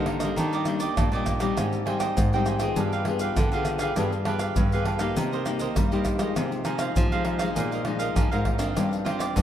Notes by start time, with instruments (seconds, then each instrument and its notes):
Already playing: nylon-string guitar G2 D3 G3 A#3 D#4
0.06 cavaquinho D#4 A#4 C5 D#5, pandeiro, tamborim
0.20 nylon-string guitar G3, cavaquinho A#4 C5 D#5, pandeiro, tamborim, maracas
0.25 nylon-string guitar A#3 D4
0.36 nylon-string guitar D#3, cavaquinho D4 G4 D#5, pandeiro, maracas, surdo
0.41 cavaquinho D5
0.53 cavaquinho G4 D5 D#5, pandeiro, maracas
0.65 nylon-string guitar G3 A#3 D4, muted cavaquinho stroke, pandeiro, tamborim, maracas
0.80 cavaquinho G4 D5 D#5, pandeiro, maracas
0.97 nylon-string guitar A#2, cavaquinho D4 G4 D5 D#5, pandeiro, tamborim, maracas, surdo
1.12 nylon-string guitar A#2 G3 A#3 D4, cavaquinho D5 D#5, pandeiro, maracas
1.16 cavaquinho G4
1.26 pandeiro, tamborim, maracas, surdo
1.40 nylon-string guitar G3 C4 D#4, cavaquinho G4 D5 D#5, pandeiro, tamborim, maracas
1.57 nylon-string guitar G#2, cavaquinho G#4 C5 D#5 G5, pandeiro, tamborim, maracas, surdo
1.73 muted cavaquinho stroke, pandeiro, maracas
1.86 nylon-string guitar G3 C4 D#4, cavaquinho G#4 C5 D#5 G5, pandeiro, tamborim
2.00 cavaquinho C5 D#5 G5, pandeiro, tamborim, maracas
2.17 nylon-string guitar G#2 D#3, pandeiro, maracas, surdo
2.33 nylon-string guitar G3 C4 D#4, cavaquinho C5 D#5 G5, pandeiro, maracas
2.46 cavaquinho G#4 C5 D#5 G5, pandeiro, tamborim, maracas
2.59 nylon-string guitar B3 F4 G#4, cavaquinho C5 D#5 G5, pandeiro, tamborim, maracas
2.76 nylon-string guitar G2 G3, cavaquinho D4 G4 B4 F5, pandeiro, maracas, surdo
2.93 cavaquinho G4 B4 F5, pandeiro, maracas
3.05 nylon-string guitar B3 F4 G#4, muted cavaquinho stroke, pandeiro, tamborim
3.19 cavaquinho G4 B4 F5, pandeiro, maracas
3.36 nylon-string guitar D3, cavaquinho D4 G4 B4 F5, pandeiro, tamborim, maracas, surdo
3.52 nylon-string guitar D3 B3 F4 G#4, cavaquinho G4 B4 F5, pandeiro, maracas
3.65 pandeiro, tamborim, maracas
3.79 nylon-string guitar B3 F4 G#4, cavaquinho G4 B4 F5, pandeiro, tamborim, maracas
3.96 nylon-string guitar G2 G3 B3 F4 G#4, cavaquinho D4 G4, pandeiro, tamborim, maracas, surdo
4.00 cavaquinho B4 F5
4.12 muted cavaquinho stroke, pandeiro, maracas
4.25 nylon-string guitar B3 F4 G#4, cavaquinho D4 G4 B4 F5, pandeiro, tamborim
4.39 cavaquinho G4 B4 F5, pandeiro, tamborim, maracas
4.56 nylon-string guitar G2 D3, pandeiro, maracas, surdo
4.72 nylon-string guitar B3 F4 G#4, cavaquinho G4 B4 F5, pandeiro, maracas
4.85 cavaquinho D4 G4 B4 F5, pandeiro, tamborim
4.99 nylon-string guitar A#3 D#4 G4, cavaquinho G4 B4 F5, pandeiro, tamborim, maracas
5.16 nylon-string guitar C3, cavaquinho D#4 A#4 C5 D#5, pandeiro, maracas, surdo
5.32 cavaquinho A#4 C5 D#5, pandeiro, maracas
5.46 nylon-string guitar A#3 D#4 G4, muted cavaquinho stroke, pandeiro, tamborim, maracas
5.59 cavaquinho A#4 C5 D#5, pandeiro, maracas
5.76 nylon-string guitar G2 G3, cavaquinho D#4 A#4 C5 D#5, pandeiro, tamborim, maracas, surdo
5.92 nylon-string guitar G3 A#3 D#4 G4, cavaquinho A#4 C5 D#5, pandeiro, maracas
6.05 pandeiro, tamborim, maracas, surdo
6.19 nylon-string guitar F3 G#3 D#4, cavaquinho A#4 C5 D#5, pandeiro, tamborim, maracas
6.36 nylon-string guitar C3, cavaquinho D#4 G#4 C5 F5, pandeiro, tamborim, maracas, surdo
6.52 muted cavaquinho stroke, pandeiro, maracas
6.65 nylon-string guitar F3 G#3 D#4, cavaquinho D#4 G#4 C5 F5, pandeiro, tamborim, maracas
6.79 cavaquinho G#4 C5 F5, pandeiro, tamborim, maracas
6.96 nylon-string guitar C3 F3, pandeiro, maracas, surdo
7.12 nylon-string guitar F3 G#3 D#4, cavaquinho G#4 C5 F5, pandeiro, maracas
7.25 cavaquinho D#4 G#4 C5 F5, pandeiro, tamborim
7.38 nylon-string guitar F3 G#3 D#4, cavaquinho G#4 C5 F5, pandeiro, tamborim, maracas
7.56 nylon-string guitar A#2, cavaquinho G#4 A#4 D#5 F5, pandeiro, maracas, surdo
7.72 cavaquinho A#4 D#5 F5, pandeiro, maracas
7.85 nylon-string guitar F3 G#3 D#4, muted cavaquinho stroke, pandeiro, tamborim
7.99 cavaquinho A#4 D#5 F5, pandeiro, maracas
8.15 nylon-string guitar F2 F3, cavaquinho G#4 A#4 D#5 F5, pandeiro, tamborim, maracas, surdo
8.31 nylon-string guitar G#2 F3 G#3 D#4, cavaquinho A#4 D#5 F5, pandeiro, maracas
8.45 pandeiro, tamborim, surdo
8.58 nylon-string guitar F3 C4 D4, cavaquinho A#4 D#5 F5, pandeiro, tamborim, maracas
8.75 nylon-string guitar G2, cavaquinho F4 G4 C5 D5, pandeiro, tamborim, maracas, surdo
8.91 muted cavaquinho stroke, pandeiro, maracas
9.05 nylon-string guitar F3 C4 D4, cavaquinho F4 G4 C5 D5, pandeiro, tamborim
9.19 cavaquinho G4 C5 D5, pandeiro, tamborim, maracas
9.36 nylon-string guitar G2 D3, pandeiro, maracas, surdo